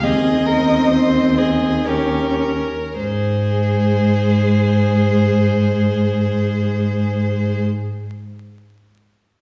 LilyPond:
<<
  \new Staff \with { instrumentName = "Violin" } { \time 3/4 \key aes \major \tempo 4 = 56 ees''4. ees''8 bes'4 | c''2.~ | c''2. | }
  \new Staff \with { instrumentName = "Violin" } { \time 3/4 \key aes \major aes'8 bes'8 c''8 aes'8 g'8 r8 | aes'2.~ | aes'2. | }
  \new Staff \with { instrumentName = "Viola" } { \time 3/4 \key aes \major c'2 des'8 r8 | aes2.~ | aes2. | }
  \new Staff \with { instrumentName = "Cello" } { \clef bass \time 3/4 \key aes \major ees,2~ ees,8 r8 | aes,2.~ | aes,2. | }
>>